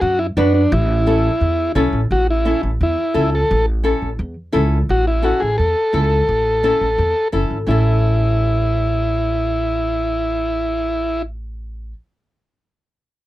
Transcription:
0.01 upright bass F#2, transistor combo organ F#4
0.19 transistor combo organ E4
0.37 upright bass F#2, nylon-string guitar D4 F#4 B4, transistor combo organ D4
0.54 transistor combo organ D4
0.72 upright bass A1, transistor combo organ E4
1.06 nylon-string guitar C#4 E4 A4
1.41 upright bass E2
1.75 upright bass B1, nylon-string guitar C#4 E4 A4
1.93 upright bass A1
2.11 upright bass A1, transistor combo organ F#4
2.31 transistor combo organ E4
2.45 nylon-string guitar C#4 E4 A4
2.63 upright bass A1
2.81 upright bass E2, transistor combo organ E4
3.14 upright bass C#2, nylon-string guitar C#4 E4 A4
3.35 transistor combo organ A4
3.51 upright bass A1
3.83 nylon-string guitar C#4 E4 A4
4.02 upright bass A1
4.19 upright bass E2
4.52 upright bass C#2, nylon-string guitar C#4 E4 A4
4.89 upright bass A1, transistor combo organ F#4
5.07 transistor combo organ E4
5.22 nylon-string guitar C#4 E4 A4, transistor combo organ F#4
5.40 upright bass A1, transistor combo organ G#4
5.58 upright bass E2, transistor combo organ A4
5.93 upright bass C#2, nylon-string guitar C#4 E4 A4
6.28 upright bass A1
6.63 nylon-string guitar C#4 E4 A4
6.81 upright bass A1
6.98 upright bass E2
7.32 upright bass F#1, nylon-string guitar C#4 E4 A4
7.50 upright bass G#1
7.67 upright bass A1, nylon-string guitar C#4 E4 A4, transistor combo organ E4

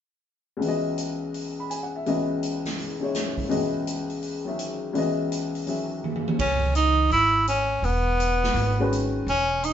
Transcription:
0.57 upright piano C#2 C#3
0.61 upright piano E3 B3, open hi-hat
0.66 upright piano F#4 D#5
0.98 closed hi-hat
1.34 open hi-hat
1.60 upright piano B5
1.70 upright piano G#5, closed hi-hat
1.83 upright piano F#5
1.96 upright piano E5
2.06 upright piano C#2 C#3 E3 B3 F#4 D#5, open hi-hat
2.43 closed hi-hat
2.65 snare, open hi-hat
2.79 open hi-hat
3.00 upright piano C#3 G#3 D#4 E4 C#5
3.15 snare, closed hi-hat
3.38 kick, open hi-hat
3.49 upright piano C#2 C#3 E3 B3 F#4 D#5, open hi-hat
3.87 closed hi-hat
4.10 open hi-hat
4.23 open hi-hat
4.45 upright piano D#3 F#3 C#4 G#4 E5
4.59 closed hi-hat
4.93 upright piano C#2 C#3 E3 B3 F#4, open hi-hat
4.98 upright piano D#5
5.32 closed hi-hat
5.55 open hi-hat
5.66 upright piano D#3 F#3 C#4 G#4 E5, open hi-hat
6.04 mid tom
6.15 mid tom
6.28 mid tom
6.39 upright bass C#2, tenor saxophone C#4, kick, ride
6.75 tenor saxophone D#4, closed hi-hat
7.10 upright bass G#1, tenor saxophone E4, open hi-hat
7.48 tenor saxophone C#4, closed hi-hat
7.82 upright bass E1, tenor saxophone B3, open hi-hat
8.20 closed hi-hat
8.44 snare
8.54 upright bass G#1, open hi-hat
8.80 upright piano D#3 G#3 C#4 F#4 B4
8.93 closed hi-hat
9.27 upright bass E1, tenor saxophone C#4, open hi-hat
9.63 tenor saxophone D#4, closed hi-hat

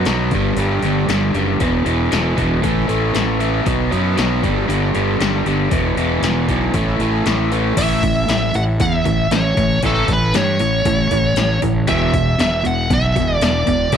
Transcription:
0.05 fingered electric bass B1, overdriven electric guitar B2 F#3 B3, snare, open hi-hat
0.31 fingered electric bass G1, overdriven electric guitar G2 D3 G3, kick, open hi-hat
0.56 fingered electric bass G1, overdriven electric guitar G2 D3 G3, open hi-hat
0.82 fingered electric bass G1, overdriven electric guitar G2 D3 G3, open hi-hat
1.08 fingered electric bass G1, overdriven electric guitar G2 D3 G3, snare, open hi-hat
1.35 fingered electric bass F#1, overdriven electric guitar G2 D3 G3, open hi-hat
1.60 fingered electric bass E1, overdriven electric guitar E2 B2 E3, kick, open hi-hat
1.85 fingered electric bass E1, overdriven electric guitar E2 B2 E3, open hi-hat
2.11 fingered electric bass E1, overdriven electric guitar E2 B2 E3, snare, open hi-hat
2.36 fingered electric bass E1, overdriven electric guitar E2 B2 E3, kick, open hi-hat
2.62 fingered electric bass A1, overdriven electric guitar A2 E3 A3, kick, open hi-hat
2.88 fingered electric bass A1, overdriven electric guitar A2 E3 A3, open hi-hat
3.14 fingered electric bass A1, overdriven electric guitar A2 E3 A3, snare, open hi-hat
3.40 overdriven electric guitar A2 E3 A3, open hi-hat
3.65 fingered electric bass B1, overdriven electric guitar B2 F#3 B3, kick, open hi-hat
3.91 fingered electric bass F#2, overdriven electric guitar B2 F#3 B3, open hi-hat
4.16 fingered electric bass B1, overdriven electric guitar B2 F#3 B3, snare, open hi-hat
4.42 fingered electric bass G1, overdriven electric guitar G2 D3 G3, kick, open hi-hat
4.68 fingered electric bass G1, overdriven electric guitar G2 D3 G3, open hi-hat
4.83 snare
4.94 fingered electric bass G1, overdriven electric guitar G2 D3 G3, open hi-hat
5.20 fingered electric bass G1, overdriven electric guitar G2 D3 G3, snare, open hi-hat
5.46 fingered electric bass G1, overdriven electric guitar G2 D3 G3, open hi-hat
5.71 fingered electric bass E1, overdriven electric guitar E2 B2 E3, kick, open hi-hat
5.96 fingered electric bass E1, overdriven electric guitar E2 B2 E3, open hi-hat
6.22 fingered electric bass E1, overdriven electric guitar E2 B2 E3, snare, open hi-hat
6.48 fingered electric bass B1, overdriven electric guitar E2 B2 E3, kick, open hi-hat
6.74 fingered electric bass A1, overdriven electric guitar A2 E3 A3, kick, open hi-hat
6.88 snare
6.99 fingered electric bass A1, overdriven electric guitar A2 E3 A3, open hi-hat
7.26 fingered electric bass A1, overdriven electric guitar A2 E3 A3, snare, open hi-hat
7.51 overdriven electric guitar A2 E3 A3, open hi-hat
7.77 fingered electric bass A1, overdriven electric guitar A2 E3 A3, lead electric guitar E5, kick, open hi-hat, crash
8.03 overdriven electric guitar A2 E3, kick, open hi-hat
8.28 fingered electric bass A1, overdriven electric guitar A2 E3, lead electric guitar E5, snare, open hi-hat
8.43 snare
8.54 fingered electric bass A1, overdriven electric guitar A2 E3, lead electric guitar F#5, open hi-hat
8.80 fingered electric bass E2, overdriven electric guitar A2 E3, lead electric guitar E5, kick, open hi-hat
8.94 snare
9.05 fingered electric bass A1, overdriven electric guitar A2 E3, kick, open hi-hat
9.31 fingered electric bass A1, overdriven electric guitar A2 E3, lead electric guitar C#5, snare, open hi-hat
9.57 fingered electric bass A1, overdriven electric guitar A2 E3, kick, open hi-hat
9.83 fingered electric bass A1, overdriven electric guitar A2 E3 A3, lead electric guitar A4, kick, open hi-hat
10.08 fingered electric bass A1, overdriven electric guitar A2 E3, kick, open hi-hat
10.13 lead electric guitar B4
10.34 fingered electric bass G2, overdriven electric guitar A2 E3, lead electric guitar C#5, snare, open hi-hat
10.59 fingered electric bass A1, overdriven electric guitar A2 E3, open hi-hat
10.85 fingered electric bass A1, overdriven electric guitar A2 E3, kick, open hi-hat
11.11 fingered electric bass A1, overdriven electric guitar A2 E3, kick, open hi-hat
11.36 fingered electric bass A1, overdriven electric guitar A2 E3, snare, open hi-hat
11.62 fingered electric bass A1, overdriven electric guitar A2 E3, kick, open hi-hat
11.87 fingered electric bass E1, overdriven electric guitar E2 B2 E3, lead electric guitar E5, kick, open hi-hat
12.13 overdriven electric guitar E2 B2, kick, open hi-hat
12.39 fingered electric bass E1, overdriven electric guitar E2 B2, lead electric guitar E5, snare, open hi-hat
12.64 fingered electric bass E1, overdriven electric guitar E2 B2, lead electric guitar F#5, open hi-hat
12.90 fingered electric bass B1, overdriven electric guitar E2 B2, lead electric guitar E5, kick, open hi-hat
13.05 snare
13.15 fingered electric bass E1, overdriven electric guitar E2 B2, kick, open hi-hat
13.41 fingered electric bass E1, overdriven electric guitar E2 B2, lead electric guitar D5, snare, open hi-hat
13.66 fingered electric bass E1, overdriven electric guitar E2 B2, kick, open hi-hat
13.92 fingered electric bass E1, overdriven electric guitar E2 B2 E3, kick, open hi-hat

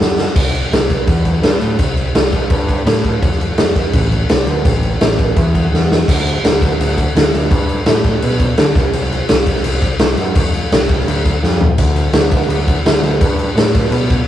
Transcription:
0.01 picked electric bass F#2, snare
0.18 snare
0.35 picked electric bass C2, kick, crash
0.47 snare
0.55 crash
0.72 picked electric bass C2, snare, crash
0.90 kick, crash
1.07 picked electric bass E2, kick, crash
1.25 kick, crash
1.42 picked electric bass G2, snare, crash
1.60 picked electric bass A2, crash
1.79 picked electric bass C2, kick, crash
1.97 crash
2.14 picked electric bass C2, snare, crash
2.33 kick, crash
2.50 picked electric bass G2, kick, crash
2.69 kick, crash
2.86 picked electric bass A2, snare, crash
3.04 kick, crash
3.22 picked electric bass F1, kick, crash
3.32 snare
3.41 crash
3.58 picked electric bass F1, snare, crash
3.76 kick, crash
3.93 picked electric bass A1, kick, crash
4.12 kick, crash
4.29 picked electric bass C2, snare, crash
4.46 picked electric bass D2, crash
4.65 picked electric bass A1, kick, crash
4.83 crash
5.01 picked electric bass A1, snare, crash
5.19 kick, crash
5.36 picked electric bass E2, kick, crash
5.55 kick, crash
5.72 picked electric bass E2, snare
5.92 snare
6.08 picked electric bass D2, kick, crash
6.27 crash
6.44 picked electric bass D2, snare, crash
6.62 kick, crash
6.79 picked electric bass D2, crash
6.98 kick, crash
7.16 picked electric bass D2, snare, crash
7.33 picked electric bass D2, snare, crash
7.50 picked electric bass G2, kick, crash
7.69 crash
7.86 picked electric bass A2, snare, crash
8.04 kick, crash
8.22 picked electric bass B2, crash
8.40 kick, crash
8.57 picked electric bass D3, snare, crash
8.75 picked electric bass C2, kick, snare, crash
8.93 picked electric bass C2, crash
9.12 crash
9.29 picked electric bass C2, snare, crash
9.46 kick, crash
9.56 snare
9.64 picked electric bass C2, crash
9.82 kick, crash
9.99 picked electric bass C2, snare, crash
10.17 picked electric bass F#2, crash
10.35 picked electric bass F1, kick, crash
10.54 crash
10.72 picked electric bass C2, snare, crash
10.89 kick, crash
11.00 snare
11.07 picked electric bass D2, crash
11.25 kick, crash
11.43 picked electric bass F2, snare
11.61 floor tom
11.78 picked electric bass D2, kick, splash, crash
11.96 crash
12.13 picked electric bass D2, snare, crash
12.31 kick, crash
12.42 snare
12.48 picked electric bass D2, crash
12.68 kick, crash
12.86 picked electric bass D2, snare, crash
13.02 picked electric bass D2, snare, crash
13.20 picked electric bass G2, kick, crash
13.39 crash
13.56 picked electric bass A2, snare, crash
13.75 kick, crash
13.85 snare
13.91 picked electric bass B2, crash
14.10 kick, crash

